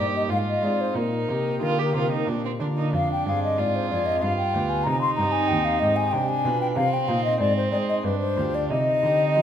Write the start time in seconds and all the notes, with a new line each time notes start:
Already playing: G2 G4
0.00 G2 A#3 D#4 G4
0.16 D#5
0.29 G#2 F4 F5
0.49 D#5
0.62 G#3 C4 D#4 F4 D5
0.81 C5
0.94 A#2 D#4 A#4
1.28 C3 A#3 D#4 G4
1.61 D3 F4
1.79 G4
1.94 C3 A#3 D#4 F4 G4
2.12 D#4
2.27 A#2 D4
2.45 C4
2.60 D3 A#3 D4 F4
2.78 D#4
2.93 F2 D4 F5
3.12 G5
3.26 G2 C4 D4 G#4 F5
3.44 D#5
3.58 G#2 F4 D5
3.76 C5
3.90 F2 C4 D4 G#4 D5
4.06 D#5
4.22 G2 F4 F5
4.37 G5
4.54 D2 B3 F4 G4
4.69 G#5
4.84 C3 D#4 A#5
5.01 C6
5.15 G2 C4 D#4 G4 A#5
5.32 G#5
5.48 D#2 G5
5.65 F5
5.79 G#2 C4 D#4 D#5
5.84 G4
5.96 G#5
6.11 C3 D4 G5
6.29 G#5
6.45 B2 D4 F4 B4
6.61 G5
6.76 C3 C4 F5
6.93 G5
7.08 A#2 C4 D#4 C5 F5
7.25 D#5
7.39 G#2 C4 D5
7.56 C5
7.72 G#3 C4 D#4 C5 D5
7.89 D#5
8.04 G2 D4 B4
8.19 C5
8.37 D2 D4 F4 G4
8.55 D5
8.70 C3 D#4 D#5
9.03 D3 C4 D#4 G4
9.36 F3